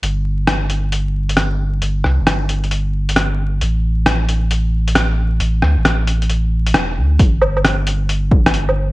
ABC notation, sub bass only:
X:1
M:4/4
L:1/16
Q:"Swing 16ths" 1/4=134
K:C
V:1 name="Sub bass" clef=bass
G,,,16 | G,,,2 C,, G,,,12- G,,, | A,,,16 | A,,,2 D,, A,,,8- A,,, E,,,2 D,,2 |
G,,,16 |]